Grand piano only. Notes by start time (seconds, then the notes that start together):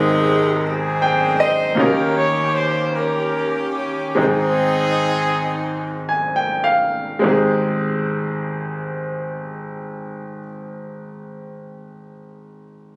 Already playing: G#1 G#2 G#3 C4 D#4 G#4
1.02 G5
1.40 D#5
1.75 D#2 D#3 A#3 C#4 D#4 F#4
1.79 A#4
1.85 G4
4.15 G#1 G#2 G#3 C4 D#4 G5
4.20 G#4
6.09 G#5
6.36 G5
6.64 F5
7.19 G#3 C4
7.24 G#1 D#4 G4
7.28 G#4